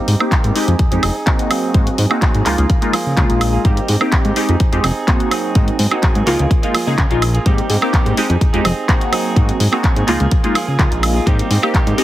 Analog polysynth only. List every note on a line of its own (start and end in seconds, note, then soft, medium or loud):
0.20 0.53 A#3 loud
0.20 0.53 C4 medium
0.20 0.53 D#4 medium
0.20 0.53 G4 loud
0.55 0.75 G#3 loud
0.55 0.75 C4 medium
0.55 0.75 D#4 medium
0.55 0.76 G4 loud
0.92 1.03 G#3 medium
0.92 1.04 C4 medium
0.92 1.04 D#4 medium
0.92 1.04 G4 medium
1.27 1.72 A#3 loud
1.27 1.72 C4 medium
1.27 1.72 D#4 medium
1.27 1.72 F#4 loud
1.74 1.94 A#3 medium
1.74 1.94 C4 medium
1.74 1.95 D#4 medium
1.74 1.95 F#4 medium
2.10 2.43 A#3 loud
2.10 2.43 C4 medium
2.10 2.43 D#4 medium
2.10 2.43 F#4 loud
2.46 2.66 G#3 medium
2.46 2.66 A#3 medium
2.46 2.66 D#4 medium
2.46 2.66 F4 loud
2.82 2.94 G#3 medium
2.82 2.94 A#3 medium
2.82 2.94 D#4 medium
2.82 2.94 F4 loud
3.17 3.62 G#3 loud
3.17 3.62 A#3 medium
3.17 3.62 D#4 medium
3.17 3.63 F4 loud
3.65 3.85 A#3 medium
3.65 3.85 C4 medium
3.65 3.85 D#4 medium
3.65 3.85 G4 medium
4.01 4.33 A#3 medium
4.01 4.34 C4 medium
4.01 4.34 D#4 medium
4.01 4.34 G4 loud
4.36 4.56 G#3 loud
4.36 4.56 C4 medium
4.36 4.56 D#4 medium
4.36 4.56 G4 loud
4.72 4.84 G#3 medium
4.72 4.84 C4 medium
4.72 4.85 D#4 medium
4.72 4.85 G4 loud
5.08 5.53 A#3 loud
5.08 5.53 C4 medium
5.08 5.53 D#4 medium
5.08 5.53 F#4 loud
5.55 5.75 A#3 medium
5.55 5.75 C4 medium
5.55 5.75 D#4 medium
5.55 5.76 F#4 medium
5.91 6.24 A#3 medium
5.91 6.24 C4 medium
5.91 6.24 D#4 medium
5.91 6.24 F#4 loud
6.27 6.47 G#3 medium
6.27 6.47 A#3 medium
6.27 6.47 D#4 medium
6.27 6.47 F4 loud
6.63 6.75 G#3 medium
6.63 6.75 A#3 medium
6.63 6.75 D#4 medium
6.63 6.75 F4 loud
6.87 6.99 G#3 medium
6.87 6.99 A#3 medium
6.87 6.99 D#4 medium
6.87 6.99 G#4 medium
7.10 7.22 G#3 loud
7.10 7.22 A#3 medium
7.10 7.23 D#4 medium
7.10 7.23 F4 loud
7.46 7.66 A#3 medium
7.46 7.66 C4 medium
7.46 7.66 D#4 medium
7.46 7.66 G4 medium
7.82 8.15 A#3 medium
7.82 8.15 C4 medium
7.82 8.15 D#4 medium
7.82 8.15 G4 loud
8.17 8.37 G#3 loud
8.17 8.37 C4 medium
8.17 8.38 D#4 medium
8.17 8.38 G4 loud
8.53 8.65 G#3 medium
8.53 8.65 C4 medium
8.53 8.66 D#4 medium
8.53 8.66 G4 loud
8.89 9.34 A#3 loud
8.89 9.34 C4 medium
8.89 9.34 D#4 medium
8.89 9.34 F#4 loud
9.36 9.56 A#3 medium
9.36 9.56 C4 medium
9.36 9.56 D#4 medium
9.36 9.56 F#4 medium
9.72 10.05 A#3 medium
9.72 10.05 C4 medium
9.72 10.05 D#4 medium
9.72 10.05 F#4 loud
10.07 10.27 G#3 loud
10.07 10.28 A#3 medium
10.07 10.28 D#4 medium
10.07 10.28 F4 loud
10.44 10.56 G#3 medium
10.44 10.56 A#3 medium
10.44 10.56 D#4 medium
10.44 10.56 F4 medium
10.79 11.24 G#3 loud
10.79 11.24 A#3 medium
10.79 11.24 D#4 medium
10.79 11.24 F4 loud
11.26 11.47 A#3 medium
11.26 11.47 C4 medium
11.26 11.47 D#4 medium
11.26 11.47 G4 medium
11.63 11.95 A#3 medium
11.63 11.95 C4 medium
11.63 11.96 D#4 medium
11.63 11.96 G4 loud
11.98 12.04 G#3 medium
11.98 12.04 C4 medium
11.98 12.04 D#4 medium
11.98 12.04 G4 loud